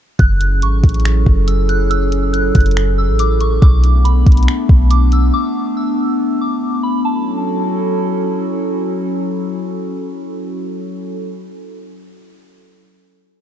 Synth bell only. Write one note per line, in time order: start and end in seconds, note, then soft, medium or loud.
0.19 0.59 F#6 medium
0.63 1.44 C#6 medium
1.48 1.68 E6 medium
1.69 1.90 F#6 medium
1.90 2.31 E6 loud
2.33 2.94 F#6 medium
2.98 3.18 E6 medium
3.20 3.40 D6 medium
3.41 3.61 C#6 medium
3.62 4.02 D6 loud
4.05 4.87 B5 medium
4.91 5.11 D6 medium
5.13 5.33 E6 medium
5.34 5.74 D6 loud
5.77 6.37 E6 medium
6.41 6.81 D6 medium
6.83 7.04 B5 medium
7.05 8.30 A5 medium